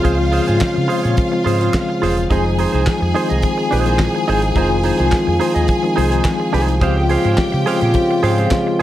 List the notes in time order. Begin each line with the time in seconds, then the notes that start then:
Already playing: C#3 F3 G#3 C4 F4 F5
0.03 C#2 C#3 F3 G#3 C4 F4 G#4 C5, kick, closed hi-hat
0.19 muted clean electric guitar stroke
0.32 F4 G#4 C5, open hi-hat
0.47 G#2 C#3 F3 G#3 C4 F4 G#4 C5, closed hi-hat
0.60 muted clean electric guitar stroke, muted fingered electric bass stroke, kick, snare, clap, closed hi-hat
0.74 C#3, muted clean electric guitar stroke
0.88 F4 G#4 C5, open hi-hat
1.03 A#2 F4 G#4 C#5, closed hi-hat
1.17 muted clean electric guitar stroke, kick, closed hi-hat
1.31 C#3 F3 G#3 C4 F4, muted clean electric guitar stroke
1.44 G#2 F4 G#4 C5, open hi-hat
1.60 F4 G#4 C5, closed hi-hat
1.74 muted clean electric guitar stroke, kick, snare, clap, closed hi-hat
1.89 muted clean electric guitar stroke
2.02 E1 F4 G#4 C5, snare, open hi-hat
2.17 muted clean electric guitar stroke, closed hi-hat
2.30 F1 D#3 F3 G#3 C4 D#4 F4 G#4 C5 G#5, kick, closed hi-hat
2.45 muted clean electric guitar stroke
2.58 D#4 G#4 C5, open hi-hat
2.72 C2 D#4 G#4 C5, closed hi-hat
2.86 muted clean electric guitar stroke, muted fingered electric bass stroke, kick, snare, clap, closed hi-hat
3.01 F2, muted clean electric guitar stroke
3.14 D#3 F3 G#3 C4 D#4 F4 G#4 C5, open hi-hat
3.30 C2 D#4 G#4 D#5, closed hi-hat
3.42 muted clean electric guitar stroke, kick, closed hi-hat
3.58 muted clean electric guitar stroke
3.71 A#1 D#4 G#4 C5, open hi-hat
3.85 D#3 F3 G#3 C4 D#4 E4 G#4 C5, closed hi-hat
3.93 F4
3.99 muted clean electric guitar stroke, kick, snare, clap, closed hi-hat
4.15 muted clean electric guitar stroke
4.28 G#1 D#4 G#4 C5, open hi-hat
4.42 muted clean electric guitar stroke, closed hi-hat
4.55 F1 D#3 F3 G#3 C4 D#4 F4 G#4 C5, kick, closed hi-hat
4.71 muted clean electric guitar stroke
4.83 D#4 G#4 C5, open hi-hat
4.98 C2 D#3 F3 G#3 C4 D#4 F4 G#4 C5, closed hi-hat
5.12 muted clean electric guitar stroke, muted fingered electric bass stroke, kick, snare, clap, closed hi-hat
5.27 F2, muted clean electric guitar stroke
5.40 D#4 G#4 C5, open hi-hat
5.55 D#2 D#4 G#4 D#5, closed hi-hat
5.68 muted clean electric guitar stroke, kick, closed hi-hat
5.83 D#3 F3 G#3 C4 D#4, muted clean electric guitar stroke
5.96 C2 D#4 G#4 C5, open hi-hat
6.10 D#4 G#4 C5, closed hi-hat
6.24 muted clean electric guitar stroke, kick, snare, clap, closed hi-hat
6.40 muted clean electric guitar stroke
6.53 C2 D#4 G#4 C5, open hi-hat
6.68 muted clean electric guitar stroke, closed hi-hat
6.81 C#2 C#3 F3 G#3 C4 F4 G4 G#4 C5 F5 G5, kick, closed hi-hat
6.97 muted clean electric guitar stroke
7.09 G#4 C5 F5, open hi-hat
7.25 G#2 G#4 C5 F5, closed hi-hat
7.37 muted clean electric guitar stroke, muted fingered electric bass stroke, kick, snare, clap, closed hi-hat
7.52 C#3, muted clean electric guitar stroke
7.66 C#3 F3 G#3 C4 F4 G#4 C5 F5, open hi-hat
7.81 A#2 G#4 C5 G5, closed hi-hat
7.94 muted clean electric guitar stroke, kick, closed hi-hat
8.11 muted clean electric guitar stroke
8.23 G#2 G#4 C5 F5, open hi-hat
8.38 C#3 F3 G#3 C4 F4 G#4 C5 F5, closed hi-hat
8.51 kick, snare, clap, closed hi-hat
8.67 muted clean electric guitar stroke